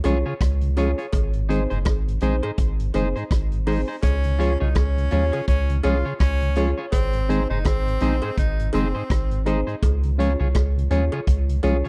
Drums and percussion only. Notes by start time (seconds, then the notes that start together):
0.04 closed hi-hat, cowbell
0.41 kick, cross-stick, closed hi-hat
0.61 closed hi-hat
0.76 closed hi-hat, cowbell
0.98 closed hi-hat
1.13 kick, closed hi-hat, cowbell
1.33 closed hi-hat
1.50 closed hi-hat
1.70 closed hi-hat
1.85 kick, cross-stick, closed hi-hat, cowbell
2.08 closed hi-hat
2.21 closed hi-hat
2.43 cowbell
2.58 kick, closed hi-hat
2.80 closed hi-hat
2.94 closed hi-hat, cowbell
3.16 closed hi-hat
3.31 kick, cross-stick, closed hi-hat
3.52 closed hi-hat
3.67 open hi-hat, cowbell
4.03 kick, closed hi-hat, cowbell
4.24 closed hi-hat
4.40 closed hi-hat
4.75 kick, cross-stick, closed hi-hat, cowbell
4.98 closed hi-hat
5.11 closed hi-hat
5.33 closed hi-hat, cowbell
5.47 kick, closed hi-hat
5.70 closed hi-hat
5.84 closed hi-hat, cowbell
6.20 kick, cross-stick, closed hi-hat
6.41 closed hi-hat
6.55 closed hi-hat, cowbell
6.92 kick, closed hi-hat, cowbell
7.13 closed hi-hat
7.30 closed hi-hat
7.65 kick, cross-stick, closed hi-hat, cowbell
7.88 closed hi-hat
8.00 closed hi-hat
8.22 cowbell
8.37 kick, closed hi-hat
8.60 closed hi-hat
8.73 closed hi-hat, cowbell
9.10 kick, cross-stick, closed hi-hat
9.31 closed hi-hat
9.46 closed hi-hat, cowbell
9.68 closed hi-hat
9.83 kick, closed hi-hat, cowbell
10.03 closed hi-hat
10.20 closed hi-hat
10.55 kick, cross-stick, closed hi-hat, cowbell
10.79 closed hi-hat
10.91 closed hi-hat
11.12 cowbell
11.27 kick, closed hi-hat
11.49 closed hi-hat
11.63 closed hi-hat, cowbell
11.85 closed hi-hat